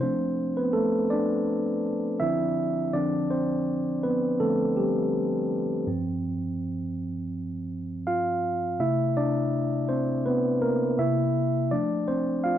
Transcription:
0.01 F3 A3 C4 D4 C5
0.57 B3 B4
0.73 A3 A4
1.10 D4 D5
2.20 D3 F3 C4 E4 E5
2.93 D3 F3 C4 D4 D5
3.30 C4 C5
4.03 B3 B4
4.40 D3 F3 A3 C4 A4
4.77 G3 G4
5.87 G2 F3 C4
8.07 F4 F5
8.80 C3 A3 E4 E5
9.17 D4 D5
9.89 C4 C5
10.26 B3 B4
10.62 A#3 A#4
10.98 C3 A#3 E4 E5
11.71 F3 A3 D4 D5
12.08 C4 C5
12.44 F4 F5

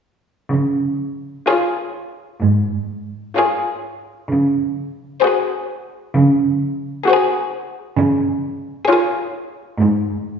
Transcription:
0.52 C#3
1.48 F4 G#4 C#5
2.42 G#2
3.36 F4 G#4 C#5
4.30 C#3
5.23 F#4 G#4 C5
6.15 C#3
7.07 F#4 G#4 C5
7.98 C#3
8.88 F4 G#4 C#5
9.79 G#2

